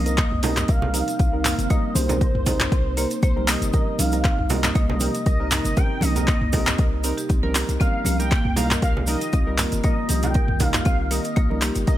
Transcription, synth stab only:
0.06 0.17 G3 medium
0.06 0.17 C4 medium
0.06 0.17 D#4 medium
0.06 0.17 A#4 medium
0.43 0.91 G3 loud
0.43 0.91 C4 medium
0.43 0.91 D#4 medium
0.43 0.91 A#4 loud
0.94 1.02 G3 loud
0.94 1.03 C4 medium
0.94 1.03 D#4 medium
0.94 1.02 A#4 loud
1.33 1.67 G3 medium
1.33 1.67 C4 medium
1.33 1.67 D#4 medium
1.33 1.67 A#4 medium
1.70 2.06 G3 medium
1.70 2.06 C4 medium
1.70 2.06 D#4 medium
1.70 2.06 A#4 medium
2.09 2.21 G3 medium
2.09 2.21 C4 medium
2.09 2.21 D#4 medium
2.09 2.21 A#4 medium
2.46 2.94 G3 loud
2.46 2.95 C4 medium
2.46 2.94 D#4 loud
2.46 2.94 A#4 loud
2.97 3.06 G3 loud
2.97 3.06 C4 medium
2.97 3.06 D#4 medium
2.97 3.06 A#4 loud
3.36 3.71 G3 medium
3.36 3.71 C4 medium
3.36 3.71 D#4 medium
3.36 3.71 A#4 medium
3.73 4.10 G3 medium
3.73 4.10 C4 medium
3.73 4.09 D#4 medium
3.73 4.10 A#4 medium
4.13 4.24 G3 medium
4.13 4.24 C4 medium
4.13 4.24 D#4 medium
4.13 4.24 A#4 medium
4.50 4.98 G3 loud
4.50 4.98 C4 medium
4.50 4.98 D#4 medium
4.50 4.98 A#4 loud
5.01 5.09 G3 loud
5.01 5.09 C4 medium
5.01 5.09 D#4 medium
5.01 5.09 A#4 loud
5.40 5.74 G3 medium
5.40 5.74 C4 medium
5.40 5.74 D#4 medium
5.40 5.74 A#4 loud
5.77 6.13 G3 medium
5.77 6.13 C4 medium
5.77 6.13 D#4 medium
5.77 6.13 A#4 medium
6.16 6.28 G3 medium
6.16 6.28 C4 medium
6.16 6.28 D#4 medium
6.16 6.28 A#4 medium
6.53 7.01 G3 loud
6.53 7.01 C4 medium
6.53 7.01 D#4 medium
6.53 7.01 A#4 loud
7.04 7.12 G3 medium
7.04 7.13 C4 medium
7.04 7.13 D#4 medium
7.04 7.13 A#4 loud
7.43 7.77 G3 medium
7.43 7.77 C4 medium
7.43 7.77 D#4 medium
7.43 7.77 A#4 medium
7.80 8.16 G3 medium
7.80 8.16 A#3 medium
7.80 8.16 D#4 medium
7.80 8.16 A#4 medium
8.19 8.31 G3 medium
8.19 8.31 A#3 medium
8.19 8.31 D#4 medium
8.19 8.31 A#4 medium
8.56 9.05 G3 loud
8.56 9.05 A#3 medium
8.56 9.05 D#4 medium
8.56 9.05 A#4 loud
9.07 9.16 G3 loud
9.07 9.16 A#3 medium
9.07 9.16 D#4 medium
9.07 9.16 A#4 loud
9.47 9.81 G3 medium
9.47 9.81 A#3 medium
9.47 9.81 D#4 medium
9.47 9.81 A#4 loud
9.84 10.20 G3 medium
9.84 10.20 A#3 medium
9.84 10.20 D#4 medium
9.84 10.20 A#4 medium
10.23 10.35 G3 medium
10.23 10.35 A#3 medium
10.23 10.35 D#4 medium
10.23 10.35 A#4 medium
10.60 11.08 G3 loud
10.60 11.08 A#3 medium
10.60 11.08 D#4 medium
10.60 11.08 A#4 loud
11.11 11.20 G3 loud
11.11 11.20 A#3 medium
11.11 11.19 D#4 medium
11.11 11.20 A#4 loud
11.50 11.84 G3 medium
11.50 11.84 A#3 medium
11.50 11.84 D#4 medium
11.50 11.84 A#4 medium
11.88 11.98 G3 medium
11.88 11.98 A#3 medium
11.88 11.98 D#4 medium
11.88 11.98 A#4 medium

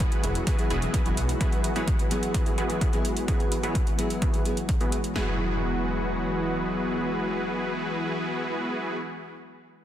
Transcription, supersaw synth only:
0.00 0.44 B3 medium
0.00 0.44 E4 medium
0.00 0.44 F#4 medium
0.00 0.44 G#4 medium
0.00 0.44 B4 medium
0.47 0.68 B3 medium
0.47 0.68 E4 medium
0.47 0.68 F#4 medium
0.47 0.68 G#4 medium
0.47 0.68 B4 medium
0.70 0.90 B3 medium
0.70 0.90 E4 medium
0.70 0.90 F#4 medium
0.70 0.90 G#4 medium
0.70 0.90 B4 medium
0.94 1.38 B3 medium
0.94 1.38 E4 medium
0.94 1.38 F#4 medium
0.94 1.38 G#4 medium
0.94 1.38 B4 medium
1.41 1.73 B3 medium
1.41 1.73 E4 medium
1.41 1.73 F#4 medium
1.41 1.73 G#4 medium
1.41 1.73 B4 loud
1.76 2.32 B3 medium
1.76 2.32 E4 medium
1.76 2.32 F#4 medium
1.76 2.32 G#4 medium
1.76 2.32 B4 medium
2.34 2.55 B3 medium
2.34 2.55 E4 medium
2.34 2.55 F#4 medium
2.34 2.55 G#4 medium
2.34 2.55 B4 medium
2.58 2.78 B3 medium
2.58 2.78 E4 medium
2.58 2.78 F#4 medium
2.58 2.78 G#4 medium
2.58 2.78 B4 medium
2.81 3.25 B3 medium
2.81 3.25 E4 medium
2.81 3.25 F#4 medium
2.81 3.25 G#4 medium
2.81 3.25 B4 medium
3.28 3.61 B3 medium
3.28 3.61 E4 medium
3.28 3.61 F#4 medium
3.28 3.61 G#4 medium
3.28 3.61 B4 loud
3.63 4.19 B3 medium
3.63 4.19 E4 medium
3.63 4.19 F#4 medium
3.63 4.19 G#4 medium
3.63 4.19 B4 medium
4.22 4.43 B3 medium
4.22 4.43 E4 medium
4.22 4.43 F#4 medium
4.22 4.43 G#4 medium
4.22 4.43 B4 medium
4.81 4.98 B3 medium
4.81 4.98 E4 medium
4.81 4.98 F#4 medium
4.81 4.98 G#4 medium
4.81 4.98 B4 medium
5.16 8.97 B3 medium
5.16 8.97 E4 medium
5.16 8.97 F#4 medium
5.16 8.97 G#4 medium
5.16 8.97 B4 medium

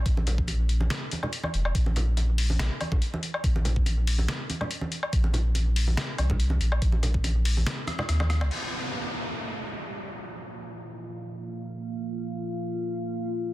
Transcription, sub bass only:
0.06 0.89 A#1 loud
1.54 1.73 F1 medium
1.75 2.58 A#1 loud
2.59 2.70 A#1 loud
3.44 4.27 A#1 loud
5.13 5.96 A#1 loud
6.18 6.60 C2 loud
6.61 6.80 A#1 loud
6.82 7.65 A#1 loud
8.09 8.43 D#2 medium
8.41 8.50 C#2 medium

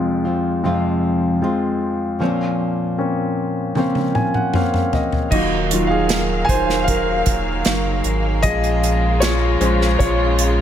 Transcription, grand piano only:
0.00 2.16 F2 soft
0.00 0.61 G#3 soft
0.00 0.61 C4 soft
0.00 0.62 F4 soft
0.63 1.39 G#3 soft
0.63 1.40 C4 soft
0.63 1.40 F4 soft
1.41 2.17 G#3 soft
1.41 2.18 C4 soft
1.41 2.18 F4 soft
2.20 5.28 A#2 soft
2.98 3.74 A#3 soft
2.98 3.74 C4 soft
2.98 3.74 C#4 soft
3.76 4.52 A#3 soft
3.76 4.52 C4 soft
3.76 4.52 C#4 soft
4.15 4.33 G#5 medium
4.35 4.53 F#5 soft
4.55 5.30 A#3 soft
4.55 5.30 C4 soft
4.55 5.30 C#4 soft
4.55 4.91 F5 medium
4.94 5.29 D#5 soft
5.31 5.87 F#4 medium
5.31 5.92 D#5 medium
5.71 6.23 F#3 soft
5.71 6.23 D#4 soft
5.71 6.23 F4 soft
5.87 6.45 G#4 medium
5.87 6.49 F5 medium
6.45 6.83 G#5 medium
6.49 6.85 C5 medium
6.84 7.99 F5 medium
6.89 8.01 A#4 medium
8.42 9.18 G#4 medium
8.42 9.23 D#5 loud
9.20 9.96 F4 medium
9.20 9.95 C#5 medium
9.60 10.61 G#3 soft
9.60 10.61 C#4 medium
9.60 10.61 C5 soft
9.99 10.61 F4 medium
9.99 10.61 C#5 medium

